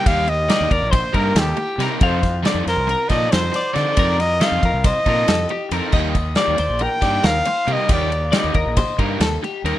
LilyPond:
<<
  \new Staff \with { instrumentName = "Trumpet" } { \time 9/8 \key ees \lydian \tempo 4. = 92 f''8 ees''4 d''8 c''8 bes'8 g'4 r8 | c''4 r8 bes'4 ees''8 c''4 d''8~ | d''8 ees''8 f''4 ees''2 r8 | r4 d''4 g''4 f''4 ees''8 |
d''4 ees''4. r2 | }
  \new Staff \with { instrumentName = "Clean electric guitar" } { \time 9/8 \key ees \lydian g'4 d''8 bes'8 c''8 bes'8 a'8 g'8 bes'8 | f''4 d''8 c''8 bes'8 d''8 c''8 d''8 c''8 | bes'4 ees''8 bes'8 c''8 bes'8 a'8 g'8 bes'8 | ees''4 d''8 c''8 bes'8 d''8 bes'8 c''8 bes'8 |
g'4 d''8 bes'8 c''8 bes'8 a'8 g'8 bes'8 | }
  \new Staff \with { instrumentName = "Overdriven electric guitar" } { \time 9/8 \key ees \lydian <g bes ees' g'>8 r8 <g bes ees' g'>8 r4 <g bes ees' g'>8 r4 <g bes ees' g'>8 | <f c' ees' a'>8 r8 <f c' ees' a'>8 r4 <f c' ees' a'>8 r4 <f c' ees' a'>8 | <f c' ees' a'>8 r8 <f c' ees' a'>8 r4 <f c' ees' a'>8 r4 <f c' ees' a'>8 | <g bes ees' g'>8 r8 <g bes ees' g'>8 r4 <g bes ees' g'>8 r4 <g bes ees' g'>8 |
<g bes ees' g'>8 r8 <g bes ees' g'>8 r4 <g bes ees' g'>8 r4 <g bes ees' g'>8 | }
  \new Staff \with { instrumentName = "Fingered electric bass" } { \clef bass \time 9/8 \key ees \lydian ees,4~ ees,16 ees,16 ees,16 bes,,8 r16 g,8 ees,8 r8 c16 r16 | f,4~ f,16 f,16 f,16 c,8 r16 bes,8 f,8 r8 d16 r16 | f,4~ f,16 f,16 f,16 c,8 r16 bes,8 f,8 r8 f,16 r16 | ees,4~ ees,16 ees,16 ees,16 bes,,8 r16 g,8 ees,8 r8 c16 r16 |
ees,4~ ees,16 ees,16 ees,16 bes,,8 r16 g,8 ees,8 r8 ees,16 r16 | }
  \new DrumStaff \with { instrumentName = "Drums" } \drummode { \time 9/8 <bd cymr>8 cymr8 <cymr sn>8 <bd cymr>8 <bd cymr>8 <bd cymr>8 <cymr sn>8 cymr8 <cymr sn>8 | <bd cymr>8 <bd cymr sn>8 <cymr sn>8 <cymr sn>8 cymr8 <bd cymr sn>8 <cymr sn>8 <cymr sn>8 <cymr sn>8 | <bd cymr>8 <cymr sn>8 <cymr sn>8 <bd cymr>8 <bd cymr sn>8 <bd cymr>8 <cymr sn>8 cymr8 cymr8 | <cymc bd>8 <bd cymr>8 <cymr sn>8 cymr8 cymr8 <bd cymr sn>8 <cymr sn>8 cymr8 cymr8 |
<bd cymr>8 cymr8 <cymr sn>8 <bd cymr>8 <bd cymr>8 <bd cymr>8 <cymr sn>8 cymr8 cymr8 | }
>>